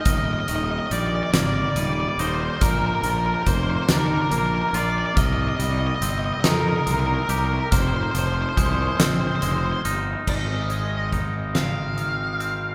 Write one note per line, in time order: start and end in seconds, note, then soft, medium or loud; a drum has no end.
0.01 0.08 D#5 medium
0.05 0.35 D#1 medium
0.05 2.19 D#2 medium
0.05 0.91 F6 medium
0.05 kick loud
0.05 closed hi-hat medium
0.10 0.18 D#5 medium
0.18 0.25 D#5 medium
0.25 0.32 D#5 medium
0.33 0.40 D#5 medium
0.40 0.48 D#5 medium
0.48 0.78 D#1 medium
0.48 2.62 D#3 medium
0.48 0.55 D#5 medium
0.48 closed hi-hat medium
0.55 0.63 D#5 medium
0.64 0.71 D#5 medium
0.71 0.78 D#5 medium
0.79 0.86 D#5 medium
0.87 0.92 D#5 medium
0.91 1.21 A#1 medium
0.91 1.76 G3 medium
0.91 0.99 D5 medium
0.91 closed hi-hat medium
1.00 1.07 D5 medium
1.07 1.15 D5 medium
1.15 1.23 D5 medium
1.23 1.31 D5 medium
1.32 1.63 G#1 medium
1.32 3.47 A#3 medium
1.32 1.39 D5 medium
1.32 snare loud
1.32 closed hi-hat medium
1.40 1.46 D5 medium
1.46 1.53 D5 medium
1.54 1.62 D5 medium
1.62 1.70 D5 medium
1.70 1.76 D5 medium
1.75 2.05 D#1 medium
1.75 2.62 G3 medium
1.75 1.84 D5 medium
1.75 2.61 D#7 medium
1.75 closed hi-hat medium
1.85 1.93 D5 medium
1.93 2.00 D5 medium
2.00 2.08 D5 medium
2.09 2.16 D5 medium
2.18 2.48 D#1 medium
2.18 2.62 D#4 medium
2.18 2.27 C5 medium
2.18 closed hi-hat medium
2.27 2.34 C5 medium
2.35 2.41 C5 medium
2.42 2.49 C5 medium
2.50 2.56 C5 medium
2.57 2.62 C5 medium
2.61 2.91 A#1 medium
2.61 4.74 A#2 medium
2.61 2.70 A#4 medium
2.61 3.46 F6 medium
2.61 kick loud
2.61 closed hi-hat medium
2.71 2.78 A#4 medium
2.78 2.86 A#4 medium
2.86 2.94 A#4 medium
2.95 3.02 A#4 medium
3.02 3.33 A#1 medium
3.02 5.17 F3 medium
3.02 3.10 A#4 medium
3.02 closed hi-hat medium
3.10 3.18 A#4 medium
3.18 3.25 A#4 medium
3.26 3.34 A#4 medium
3.34 3.42 A#4 medium
3.43 3.76 F1 medium
3.43 3.47 A#4 medium
3.43 3.89 G6 medium
3.43 kick medium
3.43 closed hi-hat medium
3.47 4.31 A#3 medium
3.47 3.54 C5 medium
3.54 3.62 C5 medium
3.63 3.70 C5 medium
3.70 3.76 C5 medium
3.76 3.82 C5 medium
3.82 3.90 C5 medium
3.88 4.19 D#2 medium
3.88 5.17 D4 medium
3.88 3.98 A#4 medium
3.88 4.72 F6 medium
3.88 snare loud
3.88 closed hi-hat medium
3.98 4.06 A#4 medium
4.06 4.13 A#4 medium
4.14 4.21 A#4 medium
4.22 4.30 A#4 medium
4.31 4.61 A#1 medium
4.31 5.17 A#3 medium
4.31 4.38 A#4 medium
4.31 closed hi-hat medium
4.38 4.46 A#4 medium
4.46 4.54 A#4 medium
4.54 4.61 A#4 medium
4.62 4.68 A#4 medium
4.69 4.76 A#4 medium
4.73 5.03 A#1 medium
4.73 5.17 F4 medium
4.73 4.83 D5 medium
4.73 5.15 F6 medium
4.73 closed hi-hat medium
4.83 4.90 D5 medium
4.90 4.98 D5 medium
4.98 5.06 D5 medium
5.06 5.14 D5 medium
5.16 5.46 C2 medium
5.16 7.29 C3 medium
5.16 5.26 D#5 loud
5.16 6.01 F6 medium
5.16 kick loud
5.16 closed hi-hat medium
5.26 5.33 D#5 medium
5.34 5.41 D#5 medium
5.42 5.48 D#5 medium
5.49 5.56 D#5 medium
5.56 5.89 C2 medium
5.56 7.72 G3 medium
5.56 5.64 D#5 medium
5.56 closed hi-hat medium
5.64 5.71 D#5 medium
5.72 5.79 D#5 medium
5.79 5.86 D#5 medium
5.87 5.95 D#5 medium
5.96 6.02 D#5 medium
6.01 6.31 G1 medium
6.01 6.86 C4 medium
6.01 6.10 D#5 medium
6.01 closed hi-hat medium
6.10 6.18 D#5 medium
6.19 6.25 D#5 medium
6.25 6.33 D#5 medium
6.34 6.40 D#5 medium
6.41 6.74 F2 medium
6.41 7.75 D#4 medium
6.41 6.48 D#5 medium
6.41 snare loud
6.41 closed hi-hat medium
6.45 6.53 A#4 medium
6.54 6.60 A#4 medium
6.61 6.68 A#4 medium
6.68 6.76 A#4 medium
6.77 6.83 A#4 medium
6.83 7.16 C2 medium
6.83 8.56 C4 medium
6.83 6.91 A#4 medium
6.83 7.72 D#6 medium
6.83 closed hi-hat medium
6.91 6.99 A#4 medium
7.00 7.06 A#4 medium
7.07 7.14 A#4 medium
7.15 7.22 A#4 medium
7.23 7.30 A#4 medium
7.29 7.58 C2 medium
7.29 7.72 G4 medium
7.29 7.38 A#4 medium
7.29 closed hi-hat medium
7.39 7.45 A#4 medium
7.46 7.53 A#4 medium
7.53 7.60 A#4 medium
7.60 7.68 A#4 medium
7.71 8.01 F1 medium
7.71 9.85 F2 medium
7.71 7.80 C5 medium
7.71 8.57 F6 medium
7.71 kick loud
7.71 closed hi-hat medium
7.81 7.87 C5 medium
7.88 7.95 C5 medium
7.96 8.03 C5 medium
8.03 8.11 C5 medium
8.11 8.44 F1 medium
8.11 10.27 F3 medium
8.11 8.18 C5 medium
8.11 closed hi-hat medium
8.19 8.26 C5 medium
8.27 8.34 C5 medium
8.34 8.41 C5 medium
8.42 8.49 C5 medium
8.49 8.57 C5 medium
8.57 8.86 C2 medium
8.57 9.41 G#3 medium
8.57 8.66 C5 medium
8.57 9.00 G6 medium
8.57 kick medium
8.57 closed hi-hat medium
8.66 8.72 C5 medium
8.73 8.80 C5 medium
8.82 8.88 C5 medium
8.88 8.96 C5 medium
8.97 9.29 A#1 medium
8.97 10.27 C4 medium
8.97 9.03 C5 medium
8.97 9.84 F6 medium
8.97 snare loud
8.97 closed hi-hat loud
9.03 9.11 C5 medium
9.12 9.19 C5 medium
9.21 9.27 C5 medium
9.27 9.35 C5 medium
9.35 9.42 C5 medium
9.42 9.72 F1 medium
9.42 10.27 G#3 medium
9.42 9.50 C5 medium
9.42 closed hi-hat medium
9.51 9.58 C5 medium
9.58 9.65 C5 medium
9.66 9.72 C5 medium
9.72 9.80 C5 medium
9.85 10.14 G1 medium
9.85 10.27 D#4 medium
9.85 10.26 F6 medium
9.85 closed hi-hat medium
10.27 12.75 G#1 medium
10.27 12.40 G#2 medium
10.27 11.09 D#5 medium
10.27 11.12 F6 medium
10.27 kick medium
10.27 crash medium
10.70 12.75 G#3 medium
10.70 closed hi-hat soft
11.12 12.75 D#4 medium
11.12 kick medium
11.12 closed hi-hat soft
11.55 12.39 C4 medium
11.55 12.75 F5 medium
11.55 snare medium
11.55 closed hi-hat medium
11.97 12.75 D#3 soft
11.97 12.75 D#6 medium
11.97 closed hi-hat soft
12.40 12.75 C4 soft
12.40 closed hi-hat soft